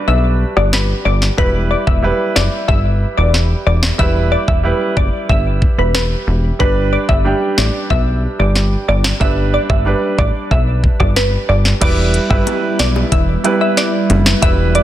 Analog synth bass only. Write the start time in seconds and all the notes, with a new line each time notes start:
0.08 B1
0.57 G1
1.06 G1
1.38 E1
1.87 E1
2.36 F#1
2.69 G1
3.18 E1
3.67 E1
3.99 E1
4.48 E1
4.97 F#1
5.29 G1
5.78 E1
6.27 E1
6.60 G1
7.09 G1
7.58 A1
7.90 B1
8.39 G1
8.88 G1
9.21 G1
9.70 G1
10.18 A1
10.51 B1
11.00 G1
11.49 G1
11.82 E1
12.31 G1
12.79 B1
13.12 E1
14.10 F#1
14.43 E1